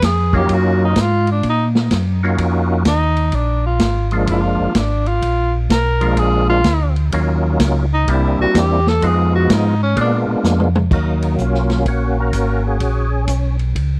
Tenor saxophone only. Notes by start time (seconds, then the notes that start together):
0.05 G#4
0.37 G4
0.55 F#4
0.85 D#4
1.01 F4
1.32 D4
1.49 D#4
2.88 D#4
3.35 D4
3.66 F4
4.30 F4
4.78 D4
5.08 F4
5.71 A#4
6.19 G#4
6.49 F4
7.93 D#4
8.11 E4
8.41 F#4
8.59 G4
8.88 A4
9.06 G#4
9.36 F#4
9.53 D#4
9.83 C#4
10.01 D4